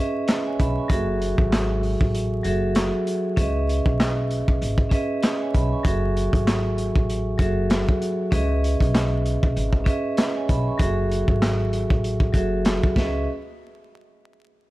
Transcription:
0.00 0.91 C#4 medium
0.00 0.90 G#4 medium
0.00 0.91 B4 medium
0.00 0.92 D#5 medium
0.00 0.59 E5 loud
0.28 snare loud
0.28 clap medium
0.28 closed hi-hat loud
0.46 0.58 C#5 medium
0.46 0.58 G#5 medium
0.59 0.76 B1 medium
0.59 0.77 E5 medium
0.59 0.77 B5 medium
0.59 kick medium
0.59 closed hi-hat medium
0.78 1.07 G#5 medium
0.78 1.07 C#6 medium
0.88 1.34 F#1 loud
0.88 2.04 F#3 medium
0.88 2.04 F#4 medium
0.88 2.04 G#4 medium
0.88 2.05 A4 medium
0.88 kick loud
0.88 closed hi-hat medium
0.92 2.06 E5 loud
1.22 closed hi-hat medium
1.38 1.94 G#1 medium
1.38 kick medium
1.53 snare loud
1.53 clap medium
1.53 closed hi-hat medium
1.83 open hi-hat soft
2.01 2.39 A1 medium
2.01 kick loud
2.15 closed hi-hat medium
2.43 2.89 F#1 medium
2.43 3.30 F#3 medium
2.43 3.30 F#4 medium
2.43 3.31 G#4 medium
2.43 3.31 A4 medium
2.43 closed hi-hat medium
2.47 3.32 E5 medium
2.75 snare loud
2.75 clap medium
2.75 closed hi-hat medium
3.07 closed hi-hat medium
3.36 3.81 C#2 loud
3.36 4.51 C#4 medium
3.36 4.52 G#4 medium
3.36 4.52 B4 medium
3.36 4.53 D#5 medium
3.36 kick loud
3.36 closed hi-hat medium
3.40 4.53 E5 medium
3.69 closed hi-hat medium
3.86 4.41 B1 medium
3.86 kick medium
4.00 snare loud
4.00 clap medium
4.00 closed hi-hat medium
4.31 closed hi-hat medium
4.48 4.59 B1 medium
4.48 kick loud
4.62 4.89 G#1 medium
4.62 closed hi-hat medium
4.78 kick medium
4.89 5.76 C#4 medium
4.89 5.77 G#4 medium
4.89 5.77 B4 medium
4.89 5.23 D#5 medium
4.89 kick medium
4.89 closed hi-hat medium
4.93 5.24 E5 medium
5.23 snare loud
5.23 clap medium
5.23 closed hi-hat medium
5.41 5.53 C#5 medium
5.41 5.53 G#5 medium
5.54 5.71 B1 medium
5.54 5.72 E5 medium
5.54 5.71 B5 medium
5.54 kick medium
5.54 closed hi-hat medium
5.72 6.02 G#5 medium
5.72 6.02 C#6 medium
5.83 6.29 F#1 loud
5.83 6.98 F#3 medium
5.83 6.99 F#4 medium
5.83 6.99 G#4 medium
5.83 7.00 A4 medium
5.83 kick loud
5.83 closed hi-hat loud
5.87 7.00 E5 loud
6.17 closed hi-hat medium
6.33 6.89 G#1 medium
6.33 kick medium
6.33 closed hi-hat medium
6.48 snare loud
6.48 clap medium
6.48 closed hi-hat medium
6.78 closed hi-hat medium
6.96 7.34 A1 medium
6.96 kick loud
7.10 closed hi-hat medium
7.38 7.83 F#1 medium
7.38 8.24 F#3 medium
7.38 8.25 F#4 medium
7.38 8.25 G#4 medium
7.38 8.26 A4 medium
7.38 kick medium
7.38 closed hi-hat medium
7.42 8.26 E5 medium
7.70 snare loud
7.70 clap medium
7.70 closed hi-hat medium
7.89 kick loud
8.02 closed hi-hat medium
8.31 8.76 C#2 loud
8.31 9.46 C#4 medium
8.31 9.46 G#4 medium
8.31 9.47 B4 medium
8.31 9.47 D#5 medium
8.31 kick loud
8.31 closed hi-hat loud
8.35 9.48 E5 medium
8.64 closed hi-hat medium
8.80 9.36 B1 medium
8.80 kick medium
8.80 closed hi-hat medium
8.95 snare loud
8.95 clap medium
8.95 closed hi-hat medium
9.26 closed hi-hat medium
9.43 9.54 B1 medium
9.43 kick loud
9.56 9.84 G#1 medium
9.56 closed hi-hat medium
9.73 kick medium
9.84 10.71 C#4 medium
9.84 10.72 G#4 medium
9.84 10.72 B4 medium
9.84 10.18 D#5 medium
9.84 kick medium
9.84 closed hi-hat medium
9.88 10.18 E5 loud
10.17 snare loud
10.17 clap medium
10.17 closed hi-hat loud
10.36 10.48 C#5 medium
10.36 10.48 G#5 medium
10.48 10.66 B1 medium
10.48 10.67 E5 medium
10.48 10.66 B5 medium
10.48 kick medium
10.48 closed hi-hat medium
10.67 10.97 G#5 medium
10.67 10.97 C#6 medium
10.78 11.24 F#1 loud
10.78 11.93 F#3 medium
10.78 11.94 F#4 medium
10.78 11.94 G#4 medium
10.78 11.95 A4 medium
10.78 kick loud
10.78 closed hi-hat medium
10.82 11.95 E5 loud
11.11 closed hi-hat medium
11.28 11.84 G#1 medium
11.28 kick medium
11.42 snare loud
11.42 clap medium
11.42 closed hi-hat medium
11.73 closed hi-hat medium
11.90 12.29 A1 medium
11.90 kick loud
12.04 closed hi-hat medium
12.20 kick medium
12.33 12.78 F#1 medium
12.33 12.95 F#3 medium
12.33 12.96 F#4 medium
12.33 12.95 G#4 medium
12.33 12.97 A4 medium
12.33 12.95 E5 medium
12.33 kick medium
12.33 closed hi-hat medium
12.65 snare loud
12.65 clap medium
12.65 closed hi-hat medium
12.83 kick loud
12.96 13.25 C#2 loud
12.96 13.25 C#4 medium
12.96 13.25 G#4 medium
12.96 13.25 B4 medium
12.96 13.25 D#5 medium
12.96 13.25 E5 medium
12.96 kick loud
12.96 snare medium

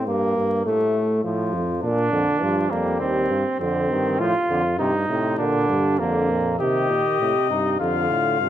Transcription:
0.07 0.36 G2 medium
0.07 0.65 A#3 medium
0.37 0.65 G2 medium
0.66 1.23 A2 medium
0.66 1.23 A3 medium
1.24 1.55 A2 medium
1.24 1.82 F3 medium
1.54 1.83 F2 medium
1.83 2.12 A#2 medium
1.83 2.72 D4 medium
2.12 2.25 F2 medium
2.12 2.43 D3 medium
2.41 2.70 G2 medium
2.41 2.70 F3 medium
2.71 3.00 F2 medium
2.71 3.31 G3 medium
2.71 3.00 A#3 medium
3.00 3.30 D#2 medium
3.00 3.59 C4 medium
3.30 3.44 G2 medium
3.60 3.89 F2 medium
3.60 3.92 D3 medium
3.60 4.21 C4 medium
3.90 4.19 G2 medium
3.90 4.19 D#3 medium
4.19 4.33 A2 medium
4.19 4.33 F3 medium
4.19 4.78 F4 medium
4.50 4.81 F2 medium
4.50 4.63 D3 medium
4.79 5.09 G2 medium
4.79 4.93 C3 medium
4.79 5.37 D#4 medium
5.09 5.38 A2 medium
5.09 5.38 C3 medium
5.38 5.68 A#2 medium
5.38 5.97 D3 medium
5.38 6.01 D4 medium
5.69 6.00 G2 medium
5.99 6.59 F2 medium
5.99 6.31 D3 medium
5.99 6.59 A#3 medium
6.29 6.59 A#2 medium
6.59 6.88 C3 medium
6.59 7.16 D#3 medium
6.59 7.46 G4 medium
6.59 7.77 D#5 medium
6.90 7.03 A#2 medium
7.20 7.34 A2 medium
7.20 7.79 C3 medium
7.50 7.80 G2 medium
7.50 7.80 D#4 medium
7.80 8.10 F2 medium
7.80 8.39 D3 medium
7.80 8.39 F4 medium
7.80 8.49 F5 medium
8.11 8.42 A2 medium
8.40 8.49 G2 medium
8.40 8.49 C3 medium
8.40 8.49 F4 medium

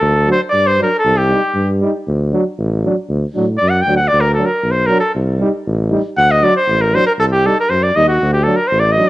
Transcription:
0.00 0.30 D2 loud
0.00 0.31 A4 medium
0.27 0.37 F#3 medium
0.27 0.38 D4 medium
0.32 0.40 C5 medium
0.50 0.81 G2 medium
0.50 0.68 D5 loud
0.67 0.82 C5 medium
0.79 0.89 F#3 soft
0.79 0.89 D4 medium
0.79 0.98 A#4 medium
0.99 1.19 A4 loud
1.05 1.33 C2 loud
1.17 1.71 G4 medium
1.30 1.40 G3 medium
1.30 1.40 D#4 medium
1.54 1.83 G2 medium
1.81 1.91 G3 medium
1.81 1.92 D#4 medium
2.07 2.35 D2 medium
2.32 2.43 F#3 medium
2.32 2.43 D4 medium
2.58 2.87 A1 loud
2.85 2.95 F#3 medium
2.85 2.95 D4 medium
3.09 3.23 D2 medium
3.35 3.59 A2 medium
3.35 3.46 F#3 medium
3.35 3.45 D4 medium
3.58 3.84 F#2 medium
3.58 3.71 D5 medium
3.70 3.83 F#5 medium
3.82 3.96 G5 loud
3.86 4.10 D2 medium
3.86 3.98 F#3 medium
3.86 3.96 D4 soft
3.96 4.09 F#5 medium
4.08 4.22 D5 loud
4.12 4.41 D2 medium
4.21 4.33 A#4 medium
4.34 4.47 D4 medium
4.34 4.47 A4 medium
4.38 4.48 F#3 medium
4.46 4.73 A#4 medium
4.63 4.91 B1 medium
4.71 4.88 C5 medium
4.87 5.00 F#3 medium
4.87 4.99 D4 medium
4.87 5.00 A#4 medium
5.00 5.12 A4 medium
5.15 5.43 C2 medium
5.40 5.50 G3 medium
5.40 5.50 D#4 medium
5.67 5.95 A1 loud
5.90 6.02 G3 medium
5.90 6.01 D#4 medium
6.17 6.45 D2 medium
6.17 6.33 F#5 loud
6.31 6.45 D#5 medium
6.41 6.53 F#3 medium
6.41 6.52 D4 medium
6.41 6.57 D5 loud
6.57 6.83 C5 medium
6.68 6.96 A1 loud
6.82 6.97 A#4 medium
6.94 7.04 F#3 medium
6.94 7.04 D4 medium
6.94 7.06 C5 loud
7.07 7.12 A#4 medium
7.19 7.47 C2 loud
7.19 7.26 A4 loud
7.33 7.48 G4 medium
7.44 7.55 G3 medium
7.44 7.56 D#4 medium
7.44 7.59 A4 medium
7.60 7.71 A#4 medium
7.70 7.93 F#2 medium
7.70 7.85 C5 medium
7.83 7.97 D5 medium
7.96 8.19 D#2 medium
7.96 8.06 G3 soft
7.96 8.06 D#4 medium
7.96 8.08 D#5 loud
8.08 8.32 F#4 medium
8.22 8.50 D2 loud
8.33 8.45 G4 medium
8.44 8.57 F#3 medium
8.44 8.57 D4 medium
8.44 8.58 A4 medium
8.56 8.69 A#4 medium
8.68 8.99 A1 loud
8.68 8.81 C5 medium
8.80 8.93 D5 medium
8.92 9.09 D#5 medium
8.98 9.08 F#3 medium
8.98 9.08 D4 medium

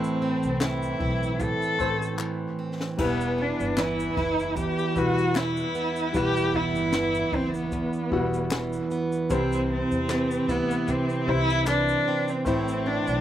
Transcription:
0.00 0.32 A1 medium
0.00 1.38 A2 medium
0.00 0.61 E3 medium
0.00 0.90 A3 medium
0.00 0.21 C4 medium
0.00 0.64 C4 medium
0.00 0.90 E4 medium
0.00 1.00 E4 medium
0.00 0.91 C5 medium
0.00 shaker medium
0.22 2.58 C4 medium
0.43 0.91 C2 medium
0.43 shaker soft
0.60 2.19 E3 medium
0.60 1.44 E4 medium
0.60 snare loud
0.60 clap medium
0.60 shaker medium
0.83 shaker medium
1.00 1.51 B1 medium
1.00 2.99 E4 medium
1.00 kick loud
1.23 shaker medium
1.40 2.98 A2 medium
1.40 2.20 A4 medium
1.40 kick medium
1.40 shaker medium
1.62 shaker soft
1.79 2.45 A1 medium
1.79 2.60 A3 medium
1.79 2.60 E4 medium
1.79 2.61 C5 medium
1.79 kick medium
1.79 shaker soft
2.02 shaker medium
2.19 3.78 E3 medium
2.19 clap medium
2.59 3.07 C4 medium
2.81 snare medium
2.97 3.49 E1 medium
2.97 4.55 E2 medium
2.97 4.06 G3 medium
2.97 4.07 E4 medium
2.97 4.17 E4 medium
2.97 4.07 B4 medium
2.97 kick loud
2.97 crash medium
3.02 3.42 B3 loud
3.21 shaker medium
3.38 5.74 B3 medium
3.38 3.81 D4 medium
3.60 4.07 G1 medium
3.60 shaker medium
3.77 5.36 E3 medium
3.77 4.57 E4 medium
3.77 snare loud
3.77 clap medium
3.77 shaker medium
4.00 shaker medium
4.17 4.67 F#1 medium
4.17 6.15 E4 medium
4.17 kick loud
4.17 snare soft
4.39 shaker medium
4.57 6.14 E2 medium
4.57 5.00 G4 medium
4.57 kick medium
4.57 shaker medium
4.78 shaker soft
4.95 5.61 E1 medium
4.95 5.76 G3 medium
4.95 5.77 E4 medium
4.95 5.39 F#4 loud
4.95 5.77 B4 medium
4.95 kick medium
4.95 shaker soft
5.18 shaker medium
5.35 6.94 E3 medium
5.35 6.18 E4 loud
5.35 snare loud
5.35 clap medium
5.35 shaker medium
5.57 shaker soft
5.75 6.53 B3 medium
5.75 shaker soft
5.96 shaker medium
6.13 6.76 E1 medium
6.13 7.72 E2 medium
6.13 7.22 G3 medium
6.13 7.23 E4 medium
6.13 7.33 E4 medium
6.13 6.57 G4 loud
6.13 7.23 B4 medium
6.13 kick loud
6.13 shaker medium
6.36 shaker medium
6.54 8.90 B3 medium
6.54 7.37 E4 loud
6.54 kick medium
6.75 7.23 G1 medium
6.75 shaker soft
6.92 8.52 E3 medium
6.92 snare loud
6.92 clap medium
6.92 shaker medium
7.14 shaker medium
7.32 7.83 F#1 medium
7.32 7.56 C4 medium
7.32 9.31 E4 medium
7.32 kick loud
7.54 8.88 B3 medium
7.54 shaker medium
7.72 9.39 E2 medium
7.72 kick medium
7.72 shaker medium
7.93 shaker soft
8.10 8.77 E1 medium
8.10 8.92 G3 medium
8.10 8.93 E4 medium
8.10 8.93 F#4 medium
8.10 kick medium
8.34 shaker medium
8.50 10.09 E3 medium
8.50 snare loud
8.50 clap medium
8.50 shaker medium
8.73 shaker medium
8.91 9.39 B3 medium
8.91 shaker soft
9.12 shaker soft
9.29 9.80 C2 loud
9.29 10.87 C3 medium
9.29 10.38 G3 medium
9.29 9.68 C4 loud
9.29 10.39 E4 medium
9.29 10.49 E4 medium
9.29 10.39 C5 medium
9.29 kick medium
9.29 shaker medium
9.52 shaker medium
9.72 10.52 C4 loud
9.91 10.38 E2 medium
9.91 shaker soft
10.09 11.67 E3 medium
10.09 snare loud
10.09 clap medium
10.09 shaker medium
10.31 shaker medium
10.48 10.99 D2 medium
10.48 10.91 B3 medium
10.48 12.47 E4 medium
10.48 kick medium
10.48 shaker medium
10.71 shaker medium
10.88 12.46 C3 medium
10.88 11.30 C4 medium
10.88 kick medium
10.88 shaker medium
11.09 shaker soft
11.27 11.92 C2 medium
11.27 12.08 G3 medium
11.27 12.08 E4 medium
11.27 11.68 E4 loud
11.27 12.09 C5 medium
11.27 kick medium
11.50 shaker medium
11.66 13.21 E3 medium
11.66 12.31 D4 loud
11.66 snare loud
11.66 clap medium
11.66 shaker medium
11.88 shaker soft
12.08 12.86 C4 medium
12.28 12.47 C4 medium
12.28 shaker medium
12.45 12.96 A1 loud
12.45 13.21 A2 medium
12.45 13.21 A3 medium
12.45 12.88 C4 medium
12.45 13.21 E4 medium
12.45 13.21 C5 medium
12.45 kick loud
12.45 shaker medium
12.68 shaker medium
12.86 13.21 C4 medium
12.86 13.21 D4 loud
13.07 13.21 B1 medium
13.07 shaker medium

